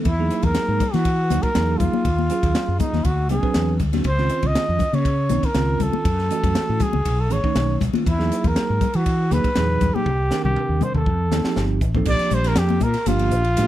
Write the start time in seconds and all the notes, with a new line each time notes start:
0.05 E2 E4, kick, ride
0.19 F#3 A#3 D#4 G#4
0.30 hi-hat pedal, ride
0.43 E2 A#4, kick, ride, low conga
0.55 snare, ride
0.68 G#2
0.80 kick, hi-hat pedal, ride, low conga
0.94 E3 F#4, snare, ride, high conga
1.05 kick, ride
1.30 D#2 F#3 A#3 D#4 F#4, hi-hat pedal, ride, high conga
1.43 A#4, kick, ride
1.54 E2 F#3 A#3 D#4 G#4, snare, ride
1.78 E2 F4, kick, hi-hat pedal, ride, low conga
1.92 muted fretless electric bass stroke, high conga
2.05 D#2, kick, ride
2.19 high conga
2.30 F#3 C#4 F4 G#4, hi-hat pedal, ride
2.43 D#2, kick, ride
2.55 snare, ride
2.68 F#2
2.79 D#4, kick, hi-hat pedal, ride, high conga, low conga
2.93 D#2, snare, high conga
3.05 D2 F#4, kick, ride
3.29 C2 F#3 C4 D4 G#4, hi-hat pedal, ride, high conga
3.42 F#3 C4 D4 B4, kick
3.54 E2, snare, ride
3.79 D2, kick, hi-hat pedal, ride, low conga
3.93 F#3 C4 D4 F#4, snare, ride, high conga
4.04 C#2, kick, ride
4.08 C5
4.18 D#3 C4 C#4 F4, snare
4.29 hi-hat pedal, ride
4.42 C#2, kick, ride, low conga
4.47 D#5
4.55 snare, ride
4.69 F2
4.79 kick, hi-hat pedal, ride, low conga
4.93 C#3 C#5, ride, high conga
5.05 kick, ride
5.29 C2 D#3 C4 C#4 D#4, hi-hat pedal, ride, high conga
5.43 A#4, kick, ride
5.54 C#2 D#3 C4 C#4 F4, snare, ride
5.80 C#2 A4, kick, hi-hat pedal, ride, low conga
5.93 high conga
6.05 F#2, kick, ride
6.19 snare
6.30 E3 A3 C#4 F#4, hi-hat pedal, ride
6.43 F#2, kick, ride, low conga
6.55 snare, ride
6.69 A2
6.80 G#4, kick, hi-hat pedal, ride, low conga
6.93 C#2, high conga
7.05 B1, kick, ride
7.20 A4
7.30 A1 D#3 A3 C#4 G#4 C#5, hi-hat pedal, ride
7.43 D#3 A3 C#4 D#4, kick
7.55 B1, snare, ride
7.81 B1, kick, hi-hat pedal, ride, low conga
7.93 D#3 A3 C#4 F4, ride, high conga
8.06 E2 E4, kick, ride
8.18 F#3 A#3 D#4 G#4, snare
8.32 hi-hat pedal, ride
8.44 E2 A#4, kick, ride, low conga
8.56 snare, ride
8.70 G#2
8.81 kick, hi-hat pedal, ride, low conga
8.94 E3 F#4, ride
9.06 kick, ride
9.30 D#2 F#3 A#3 D#4 G#4 B4, hi-hat pedal, ride, high conga
9.44 kick, ride
9.55 E2 A#2 F#3 D#4 G#4, snare, ride
9.81 E2, kick, hi-hat pedal, ride, low conga
9.95 G4, muted fretless electric bass stroke, high conga
10.06 C2, kick
10.31 D#3 C4 D4 A#4, snare, hi-hat pedal
10.44 C2 G4, high tom, low conga
10.56 mid tom
10.69 D#2
10.81 C5, hi-hat pedal, mid tom, high conga, low conga
10.94 D#2 A4, mid tom
11.06 F2, kick
11.31 D#2 F3 C4 D#4 A4, snare, hi-hat pedal, high conga
11.44 F3 C4 D#4 G4, muted fretless electric bass stroke, snare
11.56 G1, snare
11.81 A1, kick, hi-hat pedal
11.95 F3 C4 D#4 A4, kick, high conga
12.05 A#1 F3 A#3 D4 G4 D5, kick, crash
12.19 muted fretless electric bass stroke, snare, ride
12.31 A#1, hi-hat pedal, low conga
12.35 C5
12.44 A#4, snare, ride
12.56 F2 G4, snare, hi-hat pedal, ride
12.68 ride, high conga
12.80 A#2 A#4, kick, hi-hat pedal, low conga
12.94 snare, ride
13.06 G1 F3 A#3 D4 F4 G4, hi-hat pedal, ride, high conga
13.19 ride
13.31 A#1, hi-hat pedal
13.44 ride
13.57 A#2 F3 A#3 D4 G4, hi-hat pedal, ride